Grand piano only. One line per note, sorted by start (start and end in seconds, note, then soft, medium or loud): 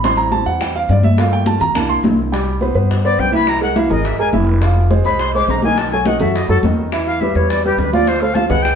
0.04 1.14 G3 medium
0.04 1.14 C4 medium
0.04 1.15 E4 medium
0.04 0.18 C6 loud
0.17 0.31 A#5 loud
0.32 0.46 A5 medium
0.46 0.60 F#5 medium
0.62 0.75 G5 loud
0.76 0.89 F5 loud
0.91 1.04 D5 medium
1.04 1.18 E5 medium
1.18 1.59 A3 medium
1.18 1.59 A#3 medium
1.18 1.59 F4 medium
1.18 1.32 F5 medium
1.33 1.47 G5 loud
1.47 1.61 A5 medium
1.61 1.75 A#5 loud
1.75 2.30 A#3 medium
1.75 2.30 D4 medium
1.75 2.31 E4 medium
1.75 1.90 A5 medium
1.89 1.98 C6 loud
2.32 2.56 G3 medium
2.32 2.56 G4 medium
2.32 2.56 G5 medium
2.61 2.73 B3 medium
2.61 2.73 B4 medium
2.61 2.74 C5 medium
2.75 2.99 B3 medium
2.75 2.99 B4 medium
2.75 2.99 C5 medium
3.04 3.28 B3 medium
3.04 3.28 B4 medium
3.04 3.29 C5 medium
3.32 3.56 E3 medium
3.32 3.56 E4 medium
3.32 3.56 E5 medium
3.61 3.73 G#3 medium
3.61 3.73 G#4 medium
3.61 3.74 A#4 medium
3.75 3.88 E3 medium
3.75 3.88 E4 medium
3.75 3.88 E5 medium
3.90 4.14 G#3 medium
3.90 4.14 G#4 medium
3.90 4.14 A#4 medium
4.19 4.31 G#3 medium
4.19 4.31 G#4 medium
4.19 4.31 A#4 medium
4.32 4.57 E3 medium
4.32 4.57 E4 medium
4.32 4.57 E5 medium
4.62 4.86 F3 medium
4.62 4.86 F4 medium
4.62 4.86 F5 medium
4.90 5.02 G#3 medium
4.90 5.03 G#4 medium
4.90 5.03 C5 medium
5.05 5.29 G#3 medium
5.05 5.29 G#4 medium
5.05 5.29 C5 medium
5.35 5.58 G#3 medium
5.35 5.59 G#4 medium
5.35 5.59 C5 medium
5.64 5.87 D#3 medium
5.64 5.88 D#4 medium
5.64 5.88 D#5 medium
5.93 6.05 F#3 medium
5.93 6.05 F#4 medium
5.93 6.05 A4 medium
6.06 6.18 D#3 medium
6.06 6.19 D#4 medium
6.06 6.19 D#5 medium
6.20 6.44 F#3 medium
6.20 6.44 F#4 medium
6.20 6.44 A4 medium
6.49 6.61 F#3 medium
6.49 6.61 F#4 medium
6.49 6.61 A4 medium
6.64 6.88 D#3 medium
6.64 6.88 D#4 medium
6.64 6.88 D#5 medium
6.93 7.16 E3 medium
6.93 7.16 E4 medium
6.93 7.16 E5 medium
7.22 7.34 G3 medium
7.22 7.33 G4 medium
7.22 7.34 B4 medium
7.36 7.59 G3 medium
7.36 7.60 G4 medium
7.36 7.60 B4 medium
7.65 7.88 G3 medium
7.65 7.89 G4 medium
7.65 7.89 B4 medium
7.93 8.17 F3 medium
7.93 8.17 F4 medium
7.93 8.17 F5 medium
8.21 8.33 A3 medium
8.21 8.34 A4 medium
8.21 8.34 C5 medium
8.36 8.48 F3 medium
8.36 8.48 F4 medium
8.36 8.48 F5 medium
8.50 8.74 G#3 medium
8.50 8.74 G#4 medium
8.50 8.74 B4 medium